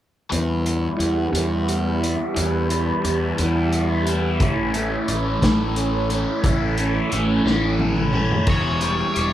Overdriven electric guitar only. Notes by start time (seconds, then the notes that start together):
0.30 E3 G3 B3 E4
0.65 G3 B3 E4
0.97 E3 G3 B3 E4
1.32 E3 G3 B3 E4
2.00 G3 B3 E4
2.35 E3 G3 B3 E4
2.70 G3 B3 E4
3.04 E3 G3 B3 E4
3.38 E3 G3 B3 E4
4.05 G3 B3 E4
4.41 A2 E3 A3 C#4 E4
4.74 A3 C#4 E4
5.08 E3 A3 C#4 E4
5.42 A2 E3 A3 C#4 E4
6.10 A3 C#4 E4
6.44 A2 E3 A3 C#4 E4
6.78 A3 C#4 E4
7.10 E3 A3 C#4 E4
7.46 A2 E3 A3 C#4 E4
8.14 A3 C#4 E4
8.48 E3
8.82 G3
9.14 G3